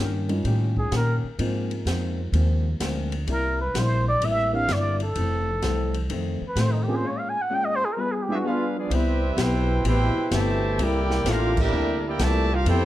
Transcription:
Already playing: G2
0.00 D#3 A#3 C#4 G4
0.29 G3 C#4 D#4 F4 A#4, ride
0.45 A2 D#3 A#3 C#4 G4, ride
0.77 G#4, kick
0.92 A#2 D#3 A#3 C#4 G4, snare, hi-hat pedal, ride
0.97 A#4
1.24 muted upright bass stroke
1.39 G#2 F3 G#3 A#3 C4 D#4 F4, ride
1.71 ride
1.85 F2 G#2 F3 A#3 C4, snare, hi-hat pedal, ride
2.32 D#2 G#2 F3 A#3 C4, ride
2.80 D2 G#2 F3 A#3 C4, snare, hi-hat pedal, ride
3.12 ride
3.27 C2 C3 G3 A#3 E4 A#4, ride
3.61 B4
3.74 A#1 C3 G3 A#3 E4, snare, hi-hat pedal, ride
3.79 C5
4.08 D5
4.21 A1 C3 G3 A#3 E4, ride
4.25 E5
4.53 A#3 C4 D4 E4 G4 F5
4.68 G1 C3 G3 A#3 E4, snare, hi-hat pedal, ride
4.72 D5
5.00 A4, ride
5.15 F1 F2 E3 A3 C4, ride
5.62 C2 F2 E3 A3 C4, snare, hi-hat pedal, ride
5.94 ride
6.10 F2 D#3 A3 C4, ride
6.41 muted upright bass stroke
6.48 B4
6.56 F2 A2 D#3 A3 C4, snare, hi-hat pedal, ride
6.61 C5
6.72 D#4
6.83 G4
6.88 A#3 C4 C#4 F4 G#4
6.96 C5
7.03 A#2 G#3 C#4 F4
7.07 C#5
7.19 F5
7.29 G#5
7.42 F#5
7.50 A#2 G#3 C#4 F4
7.54 G5
7.64 D#5
7.76 C5
7.85 G#4
7.93 A#4
7.97 G3 B3 F4 G#4 B4
8.12 G#4
8.22 G4
8.29 G3 B3 C4 D4 E4 F4 G#4 E5
8.35 F#4
8.44 G3 B3 D4 F4 G#4 B4 F5
8.48 F4
8.76 F3 B3 D4 F4 G#4 D5
8.90 C2 C3 G3 B3 C4 E4 G4 B4 E5, ride
9.37 B1 B2 C3 B3 E4 G4, snare, hi-hat pedal, ride
9.41 E4 B4 C5 G5
9.84 A1 B2 C3 B3 E4 G4, ride
9.88 E4 B4 C5 G5
10.16 muted upright bass stroke
10.31 G1 B2 C3 E3 A3 B3 E4 G4 C5 E5 A5, snare, hi-hat pedal, ride
10.78 C2 C3 A#3 E4 A4, ride
10.82 E4 G4 A#4 D5 G5
11.11 snare
11.25 A1 C3 A#3 E4 F4 A4, snare, hi-hat pedal, ride
11.30 D4 G4 A#4 F5
11.57 G3 A#3 D4 E4 E5, kick, crash
11.61 G4 A#4
11.72 D2 C3 A#3 E4 A4
12.06 A#3 E4 G4 A#4 D5 G5
12.19 C2 A#2 C3 E3 A3 A#3 E4 A4 D5 A5, snare, hi-hat pedal, ride
12.23 G4 E5
12.53 D4 F4 G4 A#4 F5
12.65 F2 F3 B3 E4 A4 C5 G5, ride
12.70 C4 G4

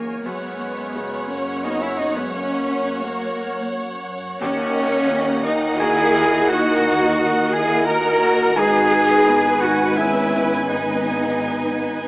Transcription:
Already playing: E2 F#3 G#3 A#3 C#4 G#4 A#4 C#5 G#5
0.24 F#2 G#3 B3 B4 C#5 F#5
0.95 C#3
1.28 A#3 C#4 C#5
1.62 A#3 B3 C#4 D#4 F#4 D#5
1.80 C#4 E4 E5
1.99 B3 D#4 D#5
2.17 G#3 B3 B4
2.33 A#3 C#4 C#5
3.03 F#3 A#3 A#4
4.41 D#2 A#3 C#4 A#4 C#5 D#5 F#5
5.10 A#2
5.44 A#3 D#4 D#5
5.80 A#3 E4 F#4 G#4 A#4 G#5
6.49 D#4 F#4 F#5
7.53 E4 G#4 G#5
7.86 F#4 A#4 A#5
8.55 G#1 G#2 D#4 G#4 B4 G#5
9.27 B2
9.60 D#4 F#4 F#5
9.97 B3 C#4 E4 G#4 E5
10.69 B3 D#4 D#5
11.46 B4
11.82 B4

